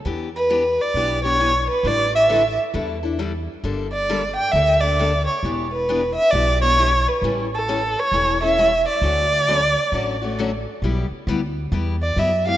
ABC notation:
X:1
M:4/4
L:1/8
Q:"Swing" 1/4=134
K:D
V:1 name="Violin"
z B2 d2 c2 B | d e2 z4 z | z d2 g e d2 c | z B2 e d c2 B |
z A2 c2 e2 d- | d6 z2 | [K:G] z4 z d e =f |]
V:2 name="Steel-string acoustic guitar"
[E,B,DG] z [E,B,DG] z [E,B,DG] [B,DG] [E,B,DG] z | [D,G,DEA] z [D,G,DEA] z [D,G,DEA] [DEA] [D,G,DEA] z | [D,G,_B,DA] z [D,G,B,DA] z [D,G,B,DA] [B,DA] [D,G,B,DA] z | [E,B,DG] z [E,B,DG] z [E,B,DG] [B,DG] [E,B,DG] z |
[E,G,CEA] z [E,G,CEA] z [E,G,CEA] [CEA] [E,G,CEA] z | [D,F,A,CF] z [D,F,A,CF] z [D,F,A,CF] [A,CF] [D,F,A,CF] z | [K:G] [G,B,EG] z [G,B,EG] z [G,B,EG] z [G,B,EG] [B,EG] |]
V:3 name="Upright bass" clef=bass
E,,4 B,,,4 | A,,,4 E,,4 | G,,,4 D,,4 | E,,,4 B,,,4 |
A,,,4 E,,,4 | D,,4 A,,,4 | [K:G] B,,, z D,,2 E,,2 F,,2 |]